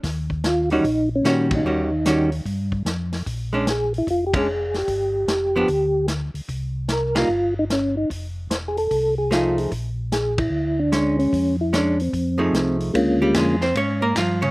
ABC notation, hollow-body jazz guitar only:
X:1
M:4/4
L:1/8
Q:"Swing" 1/4=149
K:Eb
V:1 name="Hollow-body jazz guitar"
z3 [E,G,_D^F] z2 [E,G,DF]2 | [E,G,_D^F] z [E,G,DF] z4 z | z [A,^CD] z3 [A,CD] z2 | z3 [F,=B,D] z4 |
z3 [G,B,E] z4 | z6 [F,=A,E^G]2 | z6 [A,^C]2- | [A,^C] z [A,CD] z2 [F,=A,E^G]3 |
z [G,G] [A,A] [Cc] [^C^c] [B,B] [F,F] [^C,C] |]